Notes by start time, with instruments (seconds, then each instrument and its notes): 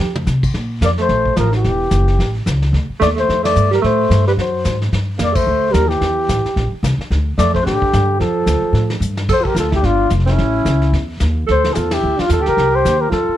Already playing: alto saxophone G4
0.00 upright bass F2
0.15 mid tom
0.27 upright bass C3, snare, hi-hat pedal
0.43 kick, crash
0.54 upright bass A#2, brush sweep, snare
0.81 upright bass F2, alto saxophone A#3, flugelhorn D5, snare, hi-hat pedal
0.98 alto saxophone A3, flugelhorn C5, snare
1.09 upright bass A#1, brush sweep, snare
1.26 kick
1.36 upright bass A1, alto saxophone F3, flugelhorn A#4, snare, hi-hat pedal
1.52 alto saxophone E3, snare
1.56 flugelhorn G4
1.64 upright bass E1, brush sweep, snare
1.91 upright bass F#1, snare, hi-hat pedal
2.08 snare
2.19 upright bass A1, brush sweep, snare
2.46 upright bass C#2, snare, hi-hat pedal
2.62 snare
2.73 upright bass D2, brush sweep, snare
2.90 muted upright bass stroke
2.99 upright bass D#2, alto saxophone A3, flugelhorn D5, snare, hi-hat pedal
3.16 alto saxophone A3, flugelhorn C5, snare
3.29 upright bass F2, brush sweep, snare
3.43 alto saxophone A3, flugelhorn D5, snare, ride
3.56 upright bass G2, hi-hat pedal
3.71 alto saxophone G3, flugelhorn A#4, snare
3.82 upright bass A2, alto saxophone A3, flugelhorn C5, brush sweep, snare
4.10 upright bass G2, snare, hi-hat pedal
4.27 alto saxophone G3, flugelhorn B4, snare
4.37 upright bass F#2, alto saxophone F#3, flugelhorn C5, brush sweep, snare
4.65 upright bass G#2, snare, hi-hat pedal
4.82 snare
4.92 upright bass G2, brush sweep, snare
5.18 upright bass F2, alto saxophone A#3, snare, hi-hat pedal
5.23 flugelhorn D5
5.33 alto saxophone A3, flugelhorn C5, kick, crash
5.46 upright bass D2, brush sweep
5.70 upright bass D#2, alto saxophone G3, flugelhorn A#4, snare, hi-hat pedal
5.87 alto saxophone E3, flugelhorn G4, snare
6.01 upright bass E2, brush sweep, snare
6.29 upright bass A1, snare, hi-hat pedal
6.45 muted upright bass stroke, snare
6.56 upright bass A#1, brush sweep, snare
6.73 muted upright bass stroke
6.83 upright bass C2, snare, hi-hat pedal
6.98 muted upright bass stroke, snare
7.10 upright bass D2, brush sweep, snare
7.38 upright bass F2, alto saxophone A3, flugelhorn D5, snare, hi-hat pedal
7.53 alto saxophone A3, flugelhorn C5, kick, snare
7.63 upright bass A2, alto saxophone D3, flugelhorn G4
7.67 brush sweep, snare
7.82 muted upright bass stroke, kick
7.93 upright bass G2, snare, hi-hat pedal
8.18 upright bass F2, alto saxophone F3, flugelhorn A4, brush sweep, snare
8.46 upright bass D2, snare, hi-hat pedal
8.62 muted upright bass stroke
8.73 upright bass A2, brush sweep, snare
8.90 snare
9.00 upright bass G2, hi-hat pedal
9.17 snare
9.28 upright bass F2, alto saxophone A4, brush sweep, kick, snare, crash
9.33 flugelhorn C5
9.41 alto saxophone F4, flugelhorn A4
9.45 alto saxophone G4, flugelhorn A#4, kick
9.55 upright bass D2, alto saxophone F4, snare, hi-hat pedal
9.60 flugelhorn A4
9.71 alto saxophone E4, flugelhorn G4, kick, snare
9.82 upright bass G1, alto saxophone D4, flugelhorn F4, brush sweep, snare
10.10 upright bass F1, snare, hi-hat pedal
10.20 snare
10.26 alto saxophone C#4, snare
10.29 flugelhorn E4, snare
10.38 upright bass A1, brush sweep, snare
10.65 upright bass C#2, snare, hi-hat pedal
10.82 snare
10.93 upright bass E2, brush sweep, snare
11.20 upright bass D#2, snare, hi-hat pedal
11.47 upright bass D2, alto saxophone A4, brush sweep, snare
11.51 flugelhorn C5
11.64 snare
11.73 upright bass E2, alto saxophone E4 F4, flugelhorn G#4, snare, hi-hat pedal
11.77 flugelhorn A4
11.90 alto saxophone E4, snare, ride
11.94 flugelhorn G4
12.03 upright bass D2, brush sweep
12.17 alto saxophone D4, flugelhorn F4, muted upright bass stroke, snare
12.27 upright bass E2, alto saxophone F4, snare, hi-hat pedal
12.32 flugelhorn A4
12.39 upright bass D2, alto saxophone G4
12.46 upright bass C2, flugelhorn A#4, snare
12.57 upright bass C2, brush sweep, snare
12.70 alto saxophone G4
12.75 flugelhorn C5
12.85 upright bass D#2, snare, hi-hat pedal
12.98 alto saxophone G4, flugelhorn A#4
13.10 upright bass F2, alto saxophone F4, flugelhorn A4, brush sweep, snare
13.28 muted upright bass stroke